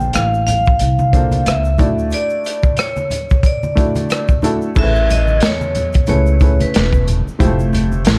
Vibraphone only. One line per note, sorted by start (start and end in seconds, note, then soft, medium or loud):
0.00 0.16 G5 loud
0.14 0.45 F5 loud
0.47 1.49 F5 loud
1.47 2.09 E5 medium
2.14 2.75 D5 loud
2.80 3.47 C#5 medium
3.46 4.40 D5 medium
4.79 5.11 E5 loud
5.12 5.44 D#5 medium
5.46 6.08 C#5 medium
6.10 6.62 C#5 medium
6.62 7.04 B4 medium